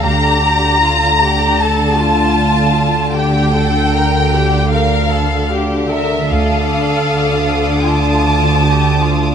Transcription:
X:1
M:4/4
L:1/8
Q:1/4=77
K:Gdor
V:1 name="Violin section"
z8 | z8 | [d'_e']8 |]
V:2 name="Violin section"
b4 a4 | g4 f2 z e | f4 a4 |]
V:3 name="Violin section"
G2 F G A F3 | G A B G B A G B | A4 F2 G F |]
V:4 name="Cello section" clef=bass
D,8- | D,8 | D,8 |]
V:5 name="Double bass section" clef=bass
D,,2 z6 | z8 | D,,2 z6 |]
V:6 name="Synth drone" clef=bass
D,,8- | D,,8 | D,,8 |]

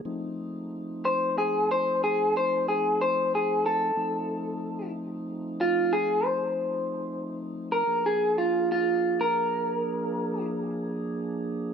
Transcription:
X:1
M:12/8
L:1/16
Q:3/8=61
K:Fmix
V:1 name="Clean electric guitar"
z6 c2 _A2 c2 A2 c2 A2 c2 A2 =A2- | A6 z4 F2 _A2 c8- c B- | B _A2 F2 F3 B8 z8 |]
V:2 name="Tonewheel organ"
[F,A,CE]24 | [F,A,CE]24 | [F,B,D_A]24 |]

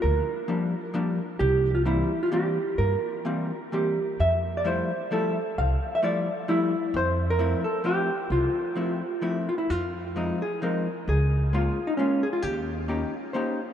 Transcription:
X:1
M:3/4
L:1/16
Q:"Swing" 1/4=131
K:F
V:1 name="Hollow-body jazz guitar"
B8 z4 | G3 F E3 F G4 | B8 G4 | e3 d c4 A4 |
f3 e d4 E4 | c3 B3 A2 G4 | F8 z2 F E | [K:Fm] F6 A2 B4 |
A4 F3 E D2 A F | G8 c4 |]
V:2 name="Hollow-body jazz guitar"
z4 [F,G,B,D]2 z2 [F,G,B,D]2 z2 | z4 [E,G,B,C]2 z2 [E,G,B,C]2 z2 | z4 [E,G,B,C]2 z2 [E,G,B,C]2 z2 | z4 [F,G,A,E]2 z2 [F,G,A,E]2 z2 |
z4 [F,G,A,E]2 z2 [F,G,A,E]2 z2 | z4 [F,A,CE]2 z2 [F,A,CE]2 z2 | z4 [F,A,CE]2 z2 [F,A,CE]2 z2 | [K:Fm] z4 [F,A,CE]2 z2 [F,A,CE]2 z2 |
z4 [A,B,DF]2 z2 [A,B,DF]2 z2 | z4 [B,DEG]2 z2 [B,DEG]2 z2 |]
V:3 name="Upright bass" clef=bass
D,,2 z8 z2 | C,,8 z4 | G,,2 z8 z2 | F,,8 z4 |
C,,2 z8 z2 | F,,8 z4 | C,,2 z8 z2 | [K:Fm] F,,8 z4 |
D,,8 z4 | E,,8 z4 |]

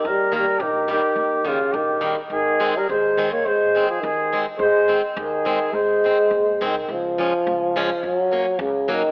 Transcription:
X:1
M:2/4
L:1/16
Q:1/4=105
K:Ab
V:1 name="Trumpet"
B2 B2 G2 G2- | G2 F2 G3 z | A3 B c3 d | c3 A A3 z |
c3 z A4 | c6 z2 | [K:Db] z8 | z8 |]
V:2 name="Steel-string acoustic guitar" clef=bass
z2 [E,G,B,]2 z2 [E,G,B,]2 | z2 [E,G,B,]2 z2 [E,G,B,]2 | z2 [E,A,C]2 z2 [E,A,C]2 | z2 [E,A,C]2 z2 [E,A,C]2 |
z2 [E,A,C]2 z2 [E,A,C]2 | z2 [E,A,C]2 z2 [E,A,C]2 | [K:Db] z2 [F,A,D]2 z2 [F,A,D]2 | z2 [G,B,D]2 z2 [G,B,D]2 |]
V:3 name="Euphonium" clef=bass
G,2 G,2 E,2 E,2- | E,2 D,2 E,3 z | E,3 G, A,3 B, | A,3 F, E,3 z |
A,3 z E,4 | A,6 E,2 | [K:Db] F,8 | G,4 D,2 E,2 |]
V:4 name="Upright bass" clef=bass
E,,4 B,,,4 | E,,4 B,,,4 | A,,,4 E,,4 | A,,,4 E,,4 |
A,,,4 E,,4 | A,,,4 B,,,2 C,,2 | [K:Db] D,,4 D,,4 | G,,4 D,,4 |]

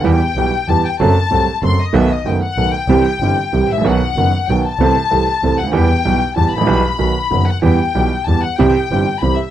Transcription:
X:1
M:3/4
L:1/16
Q:1/4=190
K:Em
V:1 name="Violin section"
g8 a2 g2 | a8 c'2 ^d2 | e2 ^d2 g2 f4 g2- | g8- g2 e2 |
f8 g2 a2- | a8- a2 f2 | g8 a2 b2- | b8- b2 f2 |
g8 a2 f2 | g8 b2 e2 |]
V:2 name="Upright piano" clef=bass
[E,,E,G,B,G]2 z2 [B,,,B,,E,G,B,G]2 z2 [E,,E,G,B,G]2 z2 | [F,,F,A,CA]2 z2 [C,,C,F,A,CA]2 z2 [F,,F,A,CA]2 z2 | [B,,,B,,^D,A,B,F]2 z2 [F,,,F,,D,A,B,F]2 z2 [B,,,B,,D,A,B,F]2 z2 | [C,,C,E,G,CG]2 z2 [G,,,G,,E,G,CG]2 z2 [C,,C,E,G,CG]2 z/2 ^G,,,/2 A,,,/2 ^A,,,/2 |
[B,,,B,,^D,F,B,F]2 z2 [F,,,F,,D,F,B,F]2 z2 [B,,,B,,D,F,B,F]2 z2 | [C,,C,E,A,CA]2 z2 [C,,C,E,A,CA]2 z2 [C,,C,E,A,CA]2 z/2 ^C,,/2 D,,/2 ^D,,/2 | [E,,E,G,B,G]2 z2 [B,,,B,,E,G,B,G]2 z2 [E,,E,G,B,G]2 z/2 ^G,,,/2 A,,,/2 ^A,,,/2 | [B,,,B,,E,G,B,G]2 z2 [B,,,B,,^D,F,B,F]2 z2 [F,,,F,,D,F,B,F]2 z2 |
[E,,E,G,B,G]2 z2 [B,,,B,,E,G,B,G]2 z2 [E,,E,G,B,G]2 z2 | [C,,C,E,G,CG]2 z2 [G,,,G,,E,G,CG]2 z2 [C,,C,E,G,CG]2 z2 |]
V:3 name="Double bass" clef=bass
E,,2 z2 B,,,2 z2 E,,2 z2 | F,,,2 z2 C,,2 z2 F,,,2 z2 | B,,,2 z2 F,,,2 z2 B,,,2 z2 | C,,2 z2 G,,,2 z2 C,,2 A,,,2 |
B,,,2 z2 F,,,2 z2 B,,,2 z2 | C,,2 z2 C,,2 z2 C,,2 D,,2 | E,,2 z2 B,,,2 z2 E,,2 A,,,2 | B,,,2 z2 B,,,2 z2 F,,,2 z2 |
E,,2 z2 B,,,2 z2 E,,2 z2 | C,,2 z2 G,,,2 z2 C,,2 z2 |]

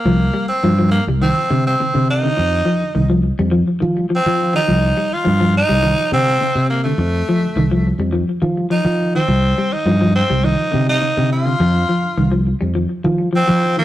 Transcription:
X:1
M:4/4
L:1/16
Q:1/4=104
K:Cdor
V:1 name="Tenor saxophone"
B,3 C3 B,2 C3 C3 E2- | E6 z6 C3 E- | E3 F3 E4 C4 B, A,- | A,6- A, z4 z E3 C- |
C3 E3 C2 E3 E3 F2- | F6 z6 C3 B, |]
V:2 name="Clean electric guitar" clef=bass
F,2 G,2 F, F,2 G, E,2 D,2 C, D,2 D, | z2 F,2 E, F,2 G, F,2 E,2 F, F,2 E, | F,2 G,2 F, F,2 G, E,2 D,2 C, z2 D, | z2 F,2 E, F,2 G, F,2 E,2 F, z2 E, |
z2 G,2 F, F,2 G, E,2 D,2 C, D,2 D, | F,2 F,2 E, F,2 G, F,2 E,2 F, F,2 E, |]
V:3 name="Fingered electric bass" clef=bass
C,,2 z2 G,,3 C,,2 z C,2 z C,3 | F,,2 z2 C,,3 F,,2 z F,2 z F,3 | C,,2 z2 G,,3 C,,2 z C,2 z C,3 | F,,2 z2 C,,3 F,,2 z F,2 z F,3 |
C,,2 z2 G,,3 C,,2 z C,2 z C,3 | F,,2 z2 C,,3 F,,2 z F,2 z F,3 |]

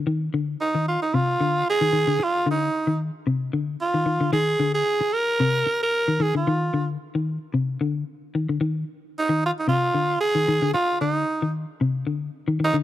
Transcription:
X:1
M:4/4
L:1/16
Q:"Swing 16ths" 1/4=112
K:Fdor
V:1 name="Tenor saxophone"
z4 E2 F E F4 A4 | F2 E4 z6 F4 | A3 A3 B4- B B3 A F- | F3 z12 z |
z4 E2 F E F4 A4 | F2 E4 z8 E2 |]
V:2 name="Clean electric guitar" clef=bass
E,2 D,2 z E,2 z C,2 D,2 z E, E, D, | z2 D,2 z E,2 z C,2 D,2 z E, E, D, | E,2 D,2 z4 C,2 z3 E, E, D, | E,2 D,2 z E,2 z C,2 D,2 z2 E, D, |
E,2 z3 E,2 z C,2 D,2 z E, E, D, | z2 D,2 z E,2 z C,2 D,2 z E, E, D, |]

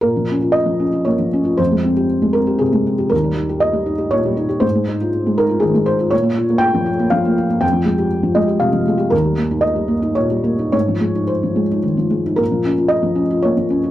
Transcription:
X:1
M:3/4
L:1/16
Q:1/4=118
K:Bbdor
V:1 name="Felt piano"
B4 e4 d4 | c6 B2 A4 | B4 e4 d4 | c6 B2 A2 c2 |
d4 g4 f4 | g6 e2 f2 z2 | B4 e4 d4 | d4 c4 z4 |
B4 e4 d4 |]
V:2 name="Felt piano"
B,, F, D F2 F, D F B, F, D F | F,, A, C G2 A, C G C, A, C G | E,, G, E G2 G, E G B,, G, E G | A,, A, E F2 A, E F E, A, E F |
B,, B, F B,2 F, F B, F, B, F B, | F,, F, A, G2 F, A, G C, F, A, G | E,, G, B, E2 G, B, E B,, G, B, E | A,, F, A, E2 F, A, E E, F, A, E |
B,, F, D F2 F, D F B, F, D F |]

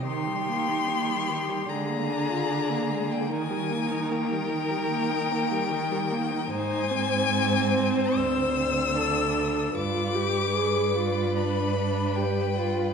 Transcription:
X:1
M:4/4
L:1/16
Q:1/4=74
K:Eb
V:1 name="Violin"
c'8 b6- b g | a4 g12 | a8 =e'8 | d'8 =b4 g4 |]
V:2 name="Violin"
G8 A8 | B16 | c4 c8 =A4 | =B16 |]
V:3 name="Viola"
E, G, B, E B, G, E, G, A, B, D F D B, A, B, | E, G, B, E B, G, E, G, B, E B, G, E, G, B, E | E2 C8- C2 D4 | F2 G2 A2 F2 D2 D2 G2 F2 |]
V:4 name="Cello" clef=bass
E,8 D,8 | E,16 | A,,8 D,,8 | G,,16 |]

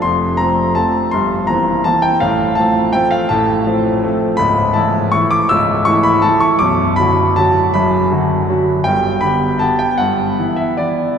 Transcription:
X:1
M:3/4
L:1/8
Q:1/4=163
K:F
V:1 name="Grand piano"
c'2 b2 a2 | c'2 b2 a g | f2 a2 g f | a6 |
[K:Bm] b2 a2 c' d' | e'2 c' b a c' | d'2 b2 a2 | b4- b z |
g2 b2 a g | f3 e d2 |]
V:2 name="Grand piano" clef=bass
[F,,,F,,]2 [F,A,C]2 [F,A,C]2 | [G,,,G,,]2 [E,B,C]2 [E,B,C]2 | [A,,,A,,]2 [F,A,C]2 [F,A,C]2 | [A,,,A,,]2 [F,A,C]2 [F,A,C]2 |
[K:Bm] [C,,,C,,]2 [E,A,E]2 [E,A,E]2 | [C,,,C,,]2 [E,A,E]2 [E,A,E]2 | [B,,,,B,,,]2 [D,F,F]2 [D,F,F]2 | [F,,,F,,]2 [D,F,F]2 [D,F,F]2 |
[G,,,G,,]2 [D,B,G]2 [D,B,G]2 | [G,,,G,,]2 [E,B,E]2 [E,B,E]2 |]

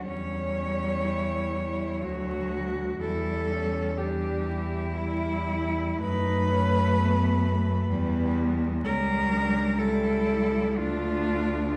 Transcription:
X:1
M:3/4
L:1/8
Q:1/4=62
K:Edor
V:1 name="Cello"
c4- c z | A2 G2 E2 | B4- B z | [K:Aphr] B2 A2 F2 |]
V:2 name="Cello"
C2 E E F2 | E C D E3 | _E C B, A, B,2 | [K:Aphr] ^C D E2 D2 |]
V:3 name="Cello" clef=bass
G,4 F,2 | G,2 G,2 G,2 | A,4 G,2 | [K:Aphr] G,2 G,2 A,2 |]
V:4 name="Cello" clef=bass
E,,4 D,,2 | E,,6 | F,,4 E,,2 | [K:Aphr] ^C,,4 D,,2 |]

